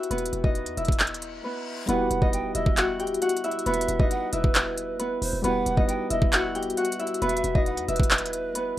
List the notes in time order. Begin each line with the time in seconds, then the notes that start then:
Already playing: B3 E4 F#4 B4 E5 F#5
0.03 closed hi-hat
0.11 E1 B3 B4, closed hi-hat
0.18 closed hi-hat
0.26 closed hi-hat
0.33 E1, closed hi-hat
0.44 D#4 D#5, kick
0.55 closed hi-hat
0.66 E2, closed hi-hat
0.77 E1 E4 E5, closed hi-hat
0.85 kick, closed hi-hat
0.92 closed hi-hat
1.00 clap, closed hi-hat, reverse cymbal
1.07 closed hi-hat
1.14 closed hi-hat
1.22 closed hi-hat
1.44 B3 B4
1.86 E1 G3 B3 E4 F#4 B4 F#5, closed hi-hat
1.91 G4
2.11 E1, closed hi-hat
2.22 D#4 D#5, kick
2.33 G5, closed hi-hat
2.55 E1 E4 D#5 E5, closed hi-hat
2.66 kick
2.77 F#4 F#5, clap, closed hi-hat
3.00 G4 G5, closed hi-hat
3.07 closed hi-hat
3.14 closed hi-hat
3.22 F#4 F#5, closed hi-hat
3.29 closed hi-hat
3.37 closed hi-hat
3.44 E4 E5, closed hi-hat
3.51 closed hi-hat
3.59 closed hi-hat
3.66 E1 B3 B4 E5, closed hi-hat
3.74 closed hi-hat
3.81 closed hi-hat
3.88 E1, closed hi-hat
4.00 D#4 D#5, kick
4.11 F#5, closed hi-hat
4.33 E1 E4 B4 E5, closed hi-hat
4.44 kick
4.55 clap, closed hi-hat
4.78 closed hi-hat
4.99 B3 B4, closed hi-hat
5.22 E1 C5, open hi-hat
5.33 E1
5.42 E1 G3 B3 E4 F#4 B4 F#5, closed hi-hat
5.47 G4
5.66 E1, closed hi-hat
5.77 D#4 D#5, kick
5.88 G5, closed hi-hat
6.10 E1 E4 D#5 E5, closed hi-hat
6.22 kick
6.33 F#4 F#5, clap, closed hi-hat
6.55 G4 G5, closed hi-hat
6.63 closed hi-hat
6.70 closed hi-hat
6.77 F#4 F#5, closed hi-hat
6.85 closed hi-hat
6.92 closed hi-hat
6.99 E4 E5, closed hi-hat
7.07 closed hi-hat
7.14 closed hi-hat
7.21 E1 B3 B4 E5, closed hi-hat
7.29 closed hi-hat
7.37 closed hi-hat
7.44 E1, closed hi-hat
7.55 D#4 D#5, kick
7.66 F#5, closed hi-hat
7.77 E2, closed hi-hat
7.88 E1 E4 B4 E5, closed hi-hat
7.96 kick, closed hi-hat
8.03 closed hi-hat
8.11 clap, closed hi-hat
8.18 closed hi-hat
8.26 closed hi-hat
8.33 closed hi-hat
8.55 B3 B4, closed hi-hat